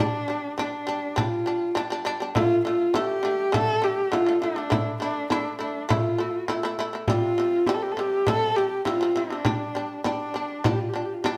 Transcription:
0.00 0.22 G3 loud
0.00 0.23 D4 loud
0.00 0.58 D4 loud
0.28 0.52 G3 medium
0.28 0.53 D4 medium
0.28 frame drum soft
0.58 0.81 G3 medium
0.58 1.20 D4 medium
0.58 0.82 D4 loud
0.58 frame drum medium
0.87 1.11 G3 medium
0.87 1.11 D4 medium
0.87 frame drum soft
1.16 1.40 G3 loud
1.16 1.41 D4 loud
1.16 2.06 F4 medium
1.16 frame drum medium
1.46 1.70 G3 medium
1.46 1.70 D4 medium
1.75 1.87 G3 loud
1.75 1.88 D4 loud
1.75 frame drum medium
1.90 2.02 G3 medium
1.90 2.03 D4 medium
2.05 2.17 G3 loud
2.05 2.18 D4 loud
2.05 frame drum soft
2.20 2.32 G3 medium
2.20 2.33 D4 medium
2.35 2.59 D3 medium
2.35 2.59 A3 loud
2.35 2.63 F4 loud
2.35 frame drum medium
2.65 2.88 D3 medium
2.65 2.89 A3 medium
2.65 2.95 F4 loud
2.65 frame drum soft
2.94 3.18 D3 medium
2.94 3.18 A3 loud
2.94 3.54 G4 loud
2.94 frame drum medium
3.23 3.47 D3 medium
3.23 3.48 A3 medium
3.23 frame drum soft
3.52 3.76 D3 loud
3.52 3.77 A3 loud
3.52 3.85 A4 loud
3.52 frame drum medium
3.82 4.06 D3 medium
3.82 4.07 A3 medium
3.82 4.15 G4 loud
4.12 4.24 D3 medium
4.12 4.25 A3 loud
4.12 4.42 F4 loud
4.12 frame drum medium
4.26 4.39 D3 medium
4.26 4.40 A3 medium
4.42 4.54 D3 medium
4.42 4.55 A3 medium
4.42 4.98 D4 medium
4.42 frame drum soft
4.56 4.68 D3 medium
4.56 4.69 A3 medium
4.70 4.95 A3 loud
4.70 4.95 E4 loud
4.70 frame drum medium
5.00 5.24 A3 medium
5.00 5.29 D4 medium
5.00 5.25 E4 medium
5.00 frame drum soft
5.30 5.54 A3 medium
5.30 5.58 D4 medium
5.30 5.55 E4 loud
5.30 frame drum medium
5.59 5.83 A3 medium
5.59 5.89 D4 medium
5.59 5.84 E4 medium
5.59 frame drum soft
5.89 6.13 A3 loud
5.89 6.14 E4 loud
5.89 6.75 F4 medium
5.89 frame drum medium
6.18 6.43 A3 medium
6.18 6.44 E4 medium
6.48 6.61 A3 loud
6.48 6.61 E4 loud
6.48 frame drum medium
6.63 6.76 A3 medium
6.63 6.76 E4 medium
6.78 6.91 A3 medium
6.78 6.92 E4 loud
6.78 frame drum soft
6.93 7.05 A3 medium
6.93 7.06 E4 medium
7.08 7.32 C3 medium
7.08 7.33 G3 loud
7.08 7.69 F4 loud
7.08 frame drum medium
7.38 7.62 C3 medium
7.38 7.63 G3 medium
7.67 7.91 C3 medium
7.67 7.92 G3 loud
7.67 7.76 G4 medium
7.67 frame drum medium
7.74 7.84 A4 medium
7.82 7.93 G4 medium
7.92 8.01 A4 medium
7.97 8.21 C3 medium
7.97 8.22 G3 medium
7.97 8.29 G4 loud
7.97 frame drum soft
8.27 8.51 C3 loud
8.27 8.51 G3 loud
8.27 8.57 A4 loud
8.27 frame drum medium
8.56 8.80 C3 medium
8.56 8.81 G3 medium
8.56 8.86 G4 loud
8.85 8.98 C3 medium
8.85 8.99 G3 loud
8.85 9.19 F4 loud
8.85 frame drum medium
9.01 9.13 C3 medium
9.01 9.14 G3 medium
9.16 9.28 C3 medium
9.16 9.29 G3 medium
9.16 10.05 D4 medium
9.16 frame drum soft
9.30 9.43 C3 medium
9.30 9.43 G3 medium
9.45 9.69 G3 loud
9.45 9.70 D4 loud
9.45 frame drum medium
9.75 9.99 G3 medium
9.75 10.00 D4 medium
9.75 frame drum soft
10.04 10.29 G3 loud
10.04 10.67 D4 medium
10.04 10.30 D4 loud
10.04 frame drum medium
10.34 10.59 G3 medium
10.34 10.59 D4 medium
10.34 frame drum soft
10.64 10.89 G3 loud
10.64 10.89 D4 loud
10.64 10.73 F4 medium
10.64 frame drum medium
10.72 10.81 G4 medium
10.80 10.90 F4 medium
10.89 10.97 G4 medium
10.94 11.18 G3 medium
10.94 11.19 D4 medium
10.94 11.06 F4 medium
11.05 11.15 G4 medium
11.14 11.24 F4 medium
11.22 11.36 G3 loud
11.22 11.37 D4 loud
11.22 11.32 G4 medium
11.22 frame drum medium
11.31 11.37 F4 medium

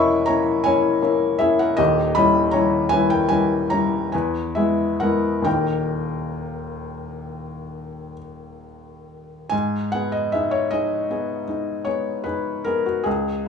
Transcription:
0.00 1.81 E1 medium
0.00 1.81 E2 medium
0.00 0.28 A#3 medium
0.00 0.29 C#4 medium
0.00 0.28 E4 medium
0.00 0.27 C#5 loud
0.00 1.77 D#5 medium
0.00 1.39 E5 medium
0.00 1.59 F#5 loud
0.00 0.64 G#5 loud
0.00 1.81 B5 loud
0.00 1.81 C#6 loud
0.00 1.81 D#6 loud
0.00 1.81 E6 loud
0.26 0.61 A#3 medium
0.26 0.62 C#4 medium
0.26 0.62 E4 medium
0.26 0.62 C#5 medium
0.26 0.64 A#5 medium
0.64 0.99 A#3 medium
0.64 0.99 C#4 medium
0.64 1.00 E4 medium
0.64 1.36 C#5 medium
0.64 1.39 G#5 loud
1.02 1.36 A#3 medium
1.02 1.36 C#4 medium
1.02 1.36 E4 medium
1.39 1.75 A#3 medium
1.39 1.75 C#4 medium
1.39 1.75 E4 medium
1.39 1.58 G#4 medium
1.39 1.58 E5 medium
1.59 1.77 A#4 medium
1.59 1.78 F#5 medium
1.77 2.14 D#1 medium
1.77 2.15 D#2 medium
1.77 2.13 G4 medium
1.77 2.14 D#5 loud
2.15 2.49 G3 medium
2.15 2.50 C#4 medium
2.15 2.50 E4 medium
2.15 2.50 D#5 medium
2.15 2.52 B5 loud
2.51 2.87 G3 medium
2.51 2.87 C#4 medium
2.51 2.87 E4 medium
2.51 2.88 C#5 medium
2.51 2.89 A#5 medium
2.89 3.26 G3 soft
2.89 3.27 C#4 medium
2.89 3.27 E4 medium
2.89 3.09 B4 medium
2.89 3.09 G#5 loud
3.10 3.29 A#4 medium
3.10 3.30 G5 medium
3.29 3.67 G3 soft
3.29 3.67 C#4 soft
3.29 3.67 E4 medium
3.29 3.68 B4 medium
3.29 3.70 G#5 medium
3.70 4.09 G3 soft
3.70 4.09 C#4 soft
3.70 4.10 E4 soft
3.70 4.10 C#5 medium
3.70 4.12 A#5 medium
4.12 4.55 E2 medium
4.12 4.53 B4 medium
4.12 4.55 G#5 medium
4.55 4.96 G#3 soft
4.55 4.97 B3 soft
4.55 4.97 E4 soft
4.55 4.97 G#4 medium
4.55 4.99 E5 medium
5.00 5.42 G#3 soft
5.00 5.42 B3 soft
5.00 5.43 E4 soft
5.00 5.43 A#4 medium
5.00 5.45 F#5 medium
5.42 9.48 D#1 soft
5.42 9.46 D#2 medium
5.42 9.47 A#3 soft
5.42 9.47 D#4 soft
5.42 8.13 A#4 medium
5.42 8.17 G5 medium
9.49 13.02 G#2 medium
9.49 9.91 G#5 medium
9.92 10.29 B3 soft
9.92 10.29 G#4 soft
9.92 10.12 F#5 medium
10.12 10.32 D#5 medium
10.32 10.68 D#4 soft
10.32 10.68 G#4 soft
10.32 10.52 E5 medium
10.51 10.71 C#5 medium
10.71 11.06 D#4 soft
10.71 11.07 G#4 soft
10.71 11.86 D#5 medium
11.10 11.44 B3 soft
11.10 11.45 G#4 soft
11.48 11.82 D#4 soft
11.48 11.83 G#4 soft
11.85 12.22 B3 soft
11.85 12.22 G#4 soft
11.85 12.25 C#5 medium
12.24 12.62 D#4 soft
12.24 12.62 G#4 soft
12.24 12.65 B4 medium
12.64 13.02 B3 soft
12.64 13.02 G#4 soft
12.64 12.85 A#4 medium
12.86 13.06 F#4 medium
13.04 13.48 C#2 medium
13.04 13.48 G#4 medium

